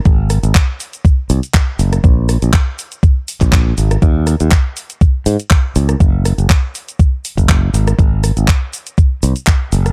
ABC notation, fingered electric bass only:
X:1
M:4/4
L:1/16
Q:"Swing 16ths" 1/4=121
K:Abmix
V:1 name="Fingered electric bass" clef=bass
A,,,3 A,,, z6 C,, z3 G,,, z | B,,,3 B,,, z6 z B,,,3 A,,, z | E,,3 E,, z6 A,, z3 D,, z | G,,,3 G,,, z6 z G,,,3 A,,, z |
A,,,3 A,,, z6 C,, z3 G,,, z |]